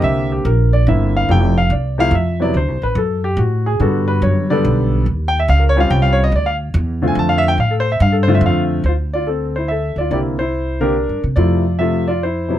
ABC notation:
X:1
M:3/4
L:1/16
Q:"Swing" 1/4=143
K:Dm
V:1 name="Grand piano"
e2 G2 B2 d2 e2 f2 | g2 f2 d2 f2 e2 d2 | c2 =B2 A2 G2 ^F2 ^G2 | A2 =B2 ^c2 d6 |
z2 g e f B _d f g f d _e | d f z4 z ^g a f e =g | f A c e f A c e f2 z2 | [Fc]2 [Fd]2 [CA]2 [Ec]2 [Ae]2 [Fd]2 |
[Gd]2 [Ec]4 [DB]4 z2 | [Fd]4 [Ae]2 [Fd]2 [Ec]4 |]
V:2 name="Grand piano"
[D,B,CG]4 z4 [D,B,CE]4 | [C,F,A,E]2 z4 [C,F,A,E]2 z2 [C,^F,=B,E]2 | z12 | [D,G,=B,^F]6 [D,G,B,A]6 |
z6 [G,C_DF]6 | z6 [D,A,CF]6 | z6 [D,A,CF]6 | z12 |
[D,B,CE]2 z4 [D,B,CG]2 z4 | [C,F,A,E]2 z2 [C,F,A,F]2 z4 [C,^F,=B,E]2 |]
V:3 name="Upright bass" clef=bass
C,,4 B,,,4 G,,,4 | F,,,4 C,,4 F,,4 | (3D,,2 C,,2 A,,,2 ^F,,4 A,,4 | G,,4 ^F,,4 =B,,,4 |
_E,,4 _D,,4 C,,4 | D,,4 E,,4 F,,4 | A,,4 G,,4 F,,4 | D,,8- D,,2 D,,2 |
C,,8- (3C,,2 G,,2 C,2 | F,,12 |]